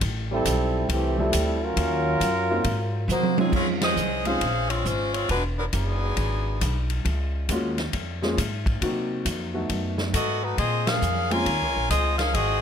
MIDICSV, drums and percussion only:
0, 0, Header, 1, 2, 480
1, 0, Start_track
1, 0, Key_signature, -5, "major"
1, 0, Tempo, 440205
1, 9, Time_signature, 4, 2, 24, 8
1, 13754, End_track
2, 0, Start_track
2, 0, Title_t, "Drums"
2, 13, Note_on_c, 9, 36, 22
2, 13, Note_on_c, 9, 51, 69
2, 122, Note_off_c, 9, 36, 0
2, 122, Note_off_c, 9, 51, 0
2, 491, Note_on_c, 9, 36, 24
2, 496, Note_on_c, 9, 44, 64
2, 496, Note_on_c, 9, 51, 69
2, 600, Note_off_c, 9, 36, 0
2, 605, Note_off_c, 9, 44, 0
2, 605, Note_off_c, 9, 51, 0
2, 969, Note_on_c, 9, 36, 24
2, 975, Note_on_c, 9, 51, 67
2, 1078, Note_off_c, 9, 36, 0
2, 1085, Note_off_c, 9, 51, 0
2, 1446, Note_on_c, 9, 36, 26
2, 1448, Note_on_c, 9, 44, 57
2, 1448, Note_on_c, 9, 51, 82
2, 1555, Note_off_c, 9, 36, 0
2, 1557, Note_off_c, 9, 44, 0
2, 1557, Note_off_c, 9, 51, 0
2, 1925, Note_on_c, 9, 36, 22
2, 1928, Note_on_c, 9, 51, 61
2, 2034, Note_off_c, 9, 36, 0
2, 2037, Note_off_c, 9, 51, 0
2, 2405, Note_on_c, 9, 36, 23
2, 2411, Note_on_c, 9, 44, 52
2, 2411, Note_on_c, 9, 51, 68
2, 2514, Note_off_c, 9, 36, 0
2, 2520, Note_off_c, 9, 44, 0
2, 2520, Note_off_c, 9, 51, 0
2, 2882, Note_on_c, 9, 36, 23
2, 2883, Note_on_c, 9, 51, 67
2, 2992, Note_off_c, 9, 36, 0
2, 2992, Note_off_c, 9, 51, 0
2, 3367, Note_on_c, 9, 48, 51
2, 3368, Note_on_c, 9, 44, 56
2, 3476, Note_off_c, 9, 48, 0
2, 3478, Note_off_c, 9, 44, 0
2, 3524, Note_on_c, 9, 48, 66
2, 3633, Note_off_c, 9, 48, 0
2, 3683, Note_on_c, 9, 48, 89
2, 3792, Note_off_c, 9, 48, 0
2, 3845, Note_on_c, 9, 36, 64
2, 3847, Note_on_c, 9, 49, 67
2, 3954, Note_off_c, 9, 36, 0
2, 3956, Note_off_c, 9, 49, 0
2, 4158, Note_on_c, 9, 38, 72
2, 4160, Note_on_c, 9, 51, 61
2, 4268, Note_off_c, 9, 38, 0
2, 4269, Note_off_c, 9, 51, 0
2, 4326, Note_on_c, 9, 44, 52
2, 4435, Note_off_c, 9, 44, 0
2, 4637, Note_on_c, 9, 51, 44
2, 4746, Note_off_c, 9, 51, 0
2, 4807, Note_on_c, 9, 36, 18
2, 4810, Note_on_c, 9, 51, 62
2, 4916, Note_off_c, 9, 36, 0
2, 4919, Note_off_c, 9, 51, 0
2, 5125, Note_on_c, 9, 51, 61
2, 5234, Note_off_c, 9, 51, 0
2, 5288, Note_on_c, 9, 36, 23
2, 5291, Note_on_c, 9, 44, 55
2, 5397, Note_off_c, 9, 36, 0
2, 5400, Note_off_c, 9, 44, 0
2, 5607, Note_on_c, 9, 51, 48
2, 5716, Note_off_c, 9, 51, 0
2, 5768, Note_on_c, 9, 36, 21
2, 5769, Note_on_c, 9, 51, 58
2, 5877, Note_off_c, 9, 36, 0
2, 5878, Note_off_c, 9, 51, 0
2, 6244, Note_on_c, 9, 44, 57
2, 6244, Note_on_c, 9, 51, 67
2, 6246, Note_on_c, 9, 36, 19
2, 6353, Note_off_c, 9, 44, 0
2, 6353, Note_off_c, 9, 51, 0
2, 6355, Note_off_c, 9, 36, 0
2, 6724, Note_on_c, 9, 51, 57
2, 6725, Note_on_c, 9, 36, 19
2, 6833, Note_off_c, 9, 51, 0
2, 6834, Note_off_c, 9, 36, 0
2, 7207, Note_on_c, 9, 36, 24
2, 7210, Note_on_c, 9, 44, 54
2, 7210, Note_on_c, 9, 51, 68
2, 7316, Note_off_c, 9, 36, 0
2, 7319, Note_off_c, 9, 44, 0
2, 7319, Note_off_c, 9, 51, 0
2, 7521, Note_on_c, 9, 51, 48
2, 7630, Note_off_c, 9, 51, 0
2, 7688, Note_on_c, 9, 36, 24
2, 7691, Note_on_c, 9, 51, 58
2, 7797, Note_off_c, 9, 36, 0
2, 7800, Note_off_c, 9, 51, 0
2, 8164, Note_on_c, 9, 44, 59
2, 8164, Note_on_c, 9, 51, 67
2, 8167, Note_on_c, 9, 36, 21
2, 8273, Note_off_c, 9, 44, 0
2, 8273, Note_off_c, 9, 51, 0
2, 8276, Note_off_c, 9, 36, 0
2, 8482, Note_on_c, 9, 38, 36
2, 8483, Note_on_c, 9, 51, 45
2, 8591, Note_off_c, 9, 38, 0
2, 8592, Note_off_c, 9, 51, 0
2, 8648, Note_on_c, 9, 51, 62
2, 8650, Note_on_c, 9, 36, 22
2, 8757, Note_off_c, 9, 51, 0
2, 8759, Note_off_c, 9, 36, 0
2, 8967, Note_on_c, 9, 38, 41
2, 9076, Note_off_c, 9, 38, 0
2, 9133, Note_on_c, 9, 36, 20
2, 9139, Note_on_c, 9, 44, 56
2, 9139, Note_on_c, 9, 51, 68
2, 9242, Note_off_c, 9, 36, 0
2, 9248, Note_off_c, 9, 44, 0
2, 9248, Note_off_c, 9, 51, 0
2, 9445, Note_on_c, 9, 36, 63
2, 9450, Note_on_c, 9, 51, 47
2, 9554, Note_off_c, 9, 36, 0
2, 9559, Note_off_c, 9, 51, 0
2, 9611, Note_on_c, 9, 36, 21
2, 9615, Note_on_c, 9, 51, 64
2, 9720, Note_off_c, 9, 36, 0
2, 9724, Note_off_c, 9, 51, 0
2, 10091, Note_on_c, 9, 36, 19
2, 10092, Note_on_c, 9, 44, 54
2, 10092, Note_on_c, 9, 51, 67
2, 10200, Note_off_c, 9, 36, 0
2, 10201, Note_off_c, 9, 44, 0
2, 10201, Note_off_c, 9, 51, 0
2, 10571, Note_on_c, 9, 51, 55
2, 10572, Note_on_c, 9, 36, 23
2, 10680, Note_off_c, 9, 51, 0
2, 10681, Note_off_c, 9, 36, 0
2, 10882, Note_on_c, 9, 38, 46
2, 10991, Note_off_c, 9, 38, 0
2, 11052, Note_on_c, 9, 36, 22
2, 11055, Note_on_c, 9, 44, 60
2, 11055, Note_on_c, 9, 51, 65
2, 11161, Note_off_c, 9, 36, 0
2, 11164, Note_off_c, 9, 44, 0
2, 11164, Note_off_c, 9, 51, 0
2, 11533, Note_on_c, 9, 36, 20
2, 11537, Note_on_c, 9, 51, 56
2, 11642, Note_off_c, 9, 36, 0
2, 11646, Note_off_c, 9, 51, 0
2, 11853, Note_on_c, 9, 38, 75
2, 11854, Note_on_c, 9, 51, 57
2, 11962, Note_off_c, 9, 38, 0
2, 11963, Note_off_c, 9, 51, 0
2, 12014, Note_on_c, 9, 44, 55
2, 12123, Note_off_c, 9, 44, 0
2, 12335, Note_on_c, 9, 51, 46
2, 12444, Note_off_c, 9, 51, 0
2, 12494, Note_on_c, 9, 36, 17
2, 12498, Note_on_c, 9, 51, 58
2, 12603, Note_off_c, 9, 36, 0
2, 12607, Note_off_c, 9, 51, 0
2, 12974, Note_on_c, 9, 36, 24
2, 12981, Note_on_c, 9, 44, 56
2, 12981, Note_on_c, 9, 51, 64
2, 13084, Note_off_c, 9, 36, 0
2, 13090, Note_off_c, 9, 44, 0
2, 13090, Note_off_c, 9, 51, 0
2, 13289, Note_on_c, 9, 38, 44
2, 13290, Note_on_c, 9, 51, 50
2, 13398, Note_off_c, 9, 38, 0
2, 13399, Note_off_c, 9, 51, 0
2, 13454, Note_on_c, 9, 36, 17
2, 13461, Note_on_c, 9, 51, 61
2, 13563, Note_off_c, 9, 36, 0
2, 13570, Note_off_c, 9, 51, 0
2, 13754, End_track
0, 0, End_of_file